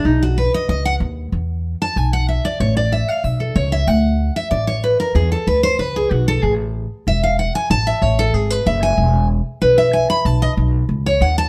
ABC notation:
X:1
M:4/4
L:1/8
Q:1/4=188
K:A
V:1 name="Steel-string acoustic guitar"
^D F B ^d d f z2 | z3 a g f e d | c d e =f e A c e | f3 e d c B _B |
G A B =c B G F A | G z3 e =f ^f g | a e c A G B e g- | g2 z2 B e g b |
a ^d z3 c f a |]
V:2 name="Upright bass" clef=bass
B,,,4 C,,2 ^D,,2 | E,,4 B,,,4 | A,,,4 B,,,2 C,,2 | D,,4 A,,,4 |
E,,2 D,,2 C,,2 B,,,2 | A,,,4 E,,,4 | A,,,2 A,,,2 G,,,2 F,,,2 | E,,,4 B,,,4 |
B,,,2 B,,,2 C,,2 ^D,,2 |]